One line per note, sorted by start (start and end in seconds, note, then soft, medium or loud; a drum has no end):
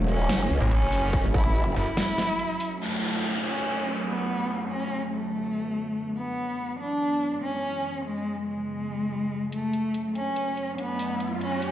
0.00 0.28 E1 loud
0.00 2.77 F#3 medium
0.00 2.77 C#4 medium
0.00 2.78 F#4 medium
0.00 2.77 A4 medium
0.08 0.63 C#4 loud
0.08 closed hi-hat medium
0.08 shaker medium
0.19 shaker medium
0.29 0.49 F#1 loud
0.29 snare loud
0.29 closed hi-hat medium
0.40 shaker medium
0.50 0.59 C#2 loud
0.50 closed hi-hat medium
0.61 0.80 A1 medium
0.71 1.26 C#4 loud
0.71 closed hi-hat medium
0.82 1.01 F#1 loud
0.92 open hi-hat loud
1.03 1.22 F#1 loud
1.13 kick loud
1.13 closed hi-hat medium
1.24 1.64 A1 loud
1.34 1.72 E4 loud
1.34 kick loud
1.34 closed hi-hat medium
1.45 shaker medium
1.55 closed hi-hat medium
1.66 1.75 F#1 loud
1.76 1.85 F#1 loud
1.76 2.73 E4 loud
1.76 closed hi-hat medium
1.76 shaker medium
1.87 shaker medium
1.97 snare loud
1.97 closed hi-hat medium
2.18 snare medium
2.18 closed hi-hat medium
2.39 closed hi-hat medium
2.60 open hi-hat loud
2.81 9.48 F#2 medium
2.81 6.13 F#3 medium
2.81 3.36 A3 medium
2.81 4.47 A3 medium
2.81 4.47 C#4 medium
2.81 downlifter medium
3.44 3.99 C#4 medium
4.07 4.62 B3 loud
4.49 6.15 D3 medium
4.49 7.81 B3 medium
4.70 5.07 C#4 medium
5.12 6.08 A3 medium
5.12 shaker medium
6.17 7.83 E3 medium
6.17 9.49 G#3 medium
6.17 6.71 B3 medium
6.80 7.34 D4 medium
6.80 shaker medium
7.43 7.97 C#4 medium
7.85 9.51 C#3 medium
7.85 9.51 F3 medium
8.06 8.43 G#3 medium
8.16 shaker medium
8.48 9.44 G#3 medium
8.48 shaker medium
8.58 shaker medium
9.52 11.71 F#2 medium
9.52 11.19 F#3 medium
9.52 10.07 A3 loud
9.52 11.19 A3 medium
9.52 11.19 C#4 medium
9.52 closed hi-hat medium
9.52 riser medium
9.73 closed hi-hat medium
9.94 closed hi-hat medium
10.15 10.70 C#4 medium
10.15 closed hi-hat medium
10.36 closed hi-hat medium
10.57 closed hi-hat medium
10.78 11.33 B3 loud
10.78 closed hi-hat medium
10.99 open hi-hat medium
11.20 11.71 D3 medium
11.20 11.71 F#3 medium
11.20 11.71 B3 medium
11.20 closed hi-hat medium
11.41 11.71 C#4 medium
11.41 closed hi-hat medium
11.62 closed hi-hat medium